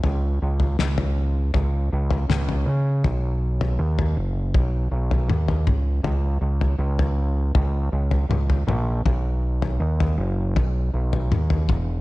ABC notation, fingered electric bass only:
X:1
M:4/4
L:1/8
Q:1/4=80
K:B
V:1 name="Fingered electric bass" clef=bass
C,, C,, C,,2 C,, C,, C,, C, | B,,,2 D,, F,,, B,,, B,,, D,, C,, | C,, C,, C,,2 C,, C,, C,, A,,, | B,,,2 D,, F,,, B,,, B,,, D,, E,,, |]